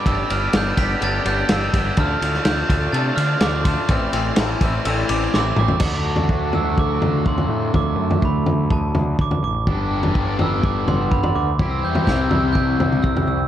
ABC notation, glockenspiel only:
X:1
M:4/4
L:1/16
Q:1/4=125
K:Ddor
V:1 name="Glockenspiel"
e'2 f'2 g'2 b'2 a'2 g'2 e'4 | f'4 g'4 a'2 f'2 d'2 c'2- | c'12 d'2 d'2- | d'6 e'2 d'4 c'4 |
d'4 b4 a4 d'2 d'2- | d'6 e'2 d'2 c'2 b c' d'2- | d' e' g'2 g'2 e'2 g'4 e'2 e'2 |]